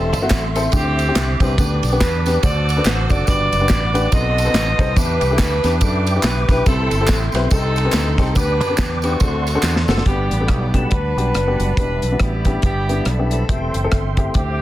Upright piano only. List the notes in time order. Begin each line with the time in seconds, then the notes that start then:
Already playing: E3 A3 C4 E4 G4
0.22 A3 C4 E4 F#4
0.56 A3 C4 E4 A4
0.72 D3 C4 D4 E4 G4
1.08 C4 D4 E4 G4
1.41 C4 D4 E4 G4
1.59 D3 B3 D4 G4 B4
1.92 B3 D4 G4 B4
2.26 B3 D4 G4 B4
2.43 D3 D4 F#4 A4 C5
2.77 D4 F#4 A4 B4
3.10 D4 F#4 A4 D5
3.28 G2 D4 F#4 G4 B4
3.61 D4 F#4 G4 B4
3.94 D4 F#4 G4 B4
4.11 B2 C4 D#4 A4 B4
4.45 C4 D#4 A4 B4
4.79 C4 D#4 A4 C5
4.96 E3 D4 E4 G4 B4
5.31 D4 E4 G4 A4
5.64 D4 E4 G4 B4
5.82 D4 E4 G4 A4
6.16 D4 E4 G4 B4
6.50 D4 E4 G4 B4
6.67 C3 C4 E4 G4 A4
7.01 C4 E4 G4 A4
7.35 C4 E4 G4 B4
7.51 C3 C4 D#4 G4 A4
7.84 C4 D#4 G4 B4
8.19 C4 D#4 G4 A4
8.35 D3 B3 D4 G4 B4
8.70 B3 D4 G4 B4
9.03 B3 D4 G4 B4
9.21 D3 C4 D4 F#4 A4
9.55 C4 D4 F#4 A4
9.89 C4 D4 F#4 A4
10.06 G2 B3 D4 F#4 G4
10.40 B3 D4 F#4 A4
10.74 B3 D4 F#4 G4
11.17 B3 D4 F#4 G4
11.47 B3 D4 F#4 G4
11.78 E3 B3 D4 E4 G4
12.12 B3 D4 E4 F#4
12.45 B3 D4 E4 G4
12.89 B3 D4 E4 G4
13.19 B3 D4 E4 G4
13.49 E3 A3 C4 E4 G4
13.84 A3 C4 E4 A4
14.18 A3 C4 E4 G4
14.35 D3